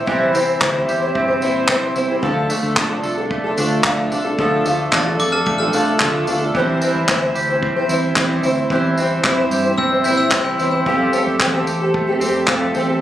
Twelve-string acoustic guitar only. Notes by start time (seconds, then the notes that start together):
0.06 C3 E3 G3 C4 E4 C5
0.33 G3 C4 E4 C5
0.59 C3 E3 G3 C4 E4 C5
0.73 G3 C4 E4 C5
1.01 G3 C4 E4 C5
1.28 G3 C4 E4 C5
1.41 G3 C4 E4 C5
1.68 C3 E3 G3 C4 E4 C5
1.95 G3 C4 E4 C5
2.08 G3 C4 E4 C5
2.22 D3 A3 D4 F4 A4
2.49 A3 D4 F4 A4
2.76 D3 A3 D4 F4 A4
2.90 D4 F4 A4
3.17 D4 F4 A4
3.44 D4 F4 A4
3.57 A3 D4 F4 A4
3.83 D3 A3 D4 F4 A4
4.10 A3 D4 F4 A4
4.24 D4 F4 A4
4.38 D3 A3 D4 F4 A4
4.64 A3 D4 F4 A4
4.92 D3 A3 D4 F4 A4
5.06 D4 F4 A4
5.33 D4 F4 A4
5.60 D4 F4 A4
5.73 A3 D4 F4 A4
6.01 D3 A3 D4 F4 A4
6.27 A3 D4 F4 A4
6.41 D4 F4 A4
6.55 E3 G3 C4 E4 C5
6.82 G3 C4 E4 C5
7.08 E3 G3 C4 E4 C5
7.22 C4 E4 C5
7.49 C4 E4 C5
7.76 C4 E4 C5
7.90 G3 C4 E4 C5
8.17 E3 G3 C4 E4 C5
8.43 G3 C4 E4 C5
8.56 C4 E4 C5
8.71 E3 G3 C4 E4 C5
8.98 G3 C4 E4 C5
9.24 E3 G3 C4 E4 C5
9.38 C4 E4 C5
9.64 C4 E4 C5
9.92 C4 E4 C5
10.05 G3 C4 E4 C5
10.32 E3 G3 C4 E4 C5
10.58 G3 C4 E4 C5
10.72 C4 E4 C5
10.86 F3 G3 C4 G4 A4
11.12 G3 C4 G4 A4
11.40 F3 G3 C4 G4 A4
11.53 C4 G4 A4
11.80 C4 G4 A4
12.07 C4 G4 A4
12.20 G3 C4 G4 A4
12.47 F3 G3 C4 G4 A4
12.74 G3 C4 G4 A4
12.87 C4 G4 A4